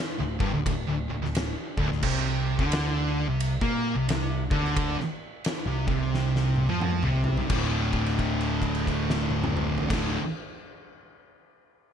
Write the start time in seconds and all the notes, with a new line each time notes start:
0.20 D1 D2
0.39 G1 G2, kick
0.53 D1 D2
0.66 D1 D2, kick, ride bell
0.87 D1 D2
1.10 D1 D2
1.21 D1 D2, snare
1.35 snare, ride bell
1.77 D1 D2, kick
1.89 D1 D2, snare
2.03 C2 C3, kick, crash
2.26 snare
2.59 D2 D3, kick
2.72 snare, ride bell
3.27 C2 C3
3.40 ride bell
3.61 A#2 A#3, kick
3.95 C2 C3
4.07 C2 C3, snare, ride bell
4.50 D2 D3, kick
4.65 snare
4.77 kick, ride bell
4.97 muted picked electric bass stroke, muted distorted electric guitar stroke, snare
5.45 snare, ride bell
5.66 C2 C3
5.87 C2 C3, kick
6.14 snare
6.36 snare
6.56 high tom
6.69 F2 F3, high tom
6.81 F2 F3, mid tom
7.03 C2 C3, mid tom
7.24 floor tom
7.37 C2 C3, floor tom
7.50 D1 D2 A2, kick, crash
7.54 D3
7.93 kick, crash
8.06 crash
8.19 kick, crash
8.41 crash
8.62 kick, crash
8.75 crash
8.87 kick, crash
9.10 snare
9.31 high tom
9.44 mid tom
9.57 mid tom
9.78 floor tom
9.89 D1 D2 A2, kick, snare, crash
9.93 D3